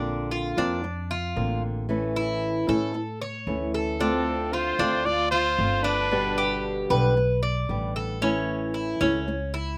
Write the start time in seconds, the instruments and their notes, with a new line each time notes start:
Already playing: upright bass A#1, nylon-string guitar D3 A#3 C4 F4, cuban tres D4
0.31 cuban tres F4
0.57 upright bass F2, nylon-string guitar A#3 C4 F4, cuban tres D4
0.84 muted nylon-string guitar stroke
1.11 cuban tres F4
1.36 upright bass A1, nylon-string guitar D3 A#3 C4 F4
1.89 nylon-string guitar E3 A3 C#4 E4
2.16 cuban tres E4
2.67 upright bass A2, nylon-string guitar A3 C#4 E4, cuban tres A4
2.94 muted nylon-string guitar stroke
3.22 cuban tres C#5
3.47 upright bass D2, nylon-string guitar E3 A3 C#4 E4
3.74 cuban tres A4
3.99 nylon-string guitar D3 A3 C4 F4, violin section C4, cuban tres D4, trumpet A4
4.52 violin section F4, cuban tres F4, trumpet C5
4.79 upright bass D2, nylon-string guitar A3 C4 F4, cuban tres D4
5.05 violin section F4, trumpet D5, muted nylon-string guitar stroke
5.31 violin section F4, cuban tres F4, trumpet C5
5.58 upright bass G1, nylon-string guitar D3 A3 C4 F4
5.83 violin section D4, cuban tres D4, trumpet B4
6.11 nylon-string guitar B2 D3 G3 B3 G4
6.38 cuban tres G4
6.90 upright bass B1, nylon-string guitar D3 G3 B3 G4, cuban tres B4
7.16 muted nylon-string guitar stroke
7.43 cuban tres D5
7.69 upright bass A1, nylon-string guitar D3 G3 B3 G4
7.96 cuban tres A4
8.21 nylon-string guitar E3 A3 C#4 E4, cuban tres C#4
8.74 cuban tres E4
9.01 upright bass C#2, nylon-string guitar A3 C#4 E4, cuban tres C#4
9.28 muted nylon-string guitar stroke
9.54 cuban tres E4